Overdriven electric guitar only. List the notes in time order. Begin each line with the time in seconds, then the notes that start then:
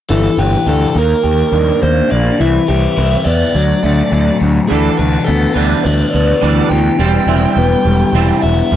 0.10 E3
0.39 G4
0.67 D4
0.95 A#3
1.24 G4
1.52 D4
1.81 A#3
2.10 A#3
2.39 E3
2.68 G4
2.97 E4
3.26 B3
3.55 F#3
3.83 A3
4.12 F#3
4.41 F#3
4.70 E3
4.99 D4
5.28 B3
5.57 E3
5.86 D4
6.15 B3
6.43 E3
6.72 E3
7.00 G3
7.28 E4
7.58 B3
7.87 G3
8.15 E4
8.45 B3
8.72 G3